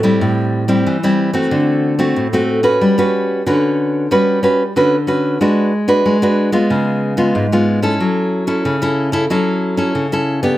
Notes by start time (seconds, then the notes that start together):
Already playing: A2
0.03 G3 C4 E4
0.21 A2
0.68 G3 C4 E4
0.86 E3
1.03 G3 C4 E4
1.33 A3 C4 F#4
1.51 D3
1.99 A3 C4 F#4
2.16 A2
2.33 A3 C4 F#4
2.63 C#4 F#4 B4
2.81 G3
2.98 C#4 F#4 B4
3.46 D3 C#4 F#4 B4
4.11 G3 C#4 F#4 B4
4.43 C#4 F#4 B4
4.76 D3 C#4 F#4 B4
5.07 C#4 F#4 B4
5.41 G#3 D4 F#4 B4
5.88 D4 F#4 B4
6.06 G#3
6.22 D4 F#4 B4
6.52 G#3 B3 F4
6.70 C#3
7.17 G#3 B3 F4
7.35 G#2
7.52 G#3 B3 F4
7.82 C#4 E4 A4
8.00 F#3
8.47 C#4 E4 A4
8.65 C#3
8.82 C#4 E4 A4
9.12 C#4 E4 A4
9.30 F#3 C#4 E4 A4
9.77 C#4 E4 A4
9.95 C#3
10.12 C#4 E4 A4
10.43 B3 D4 G4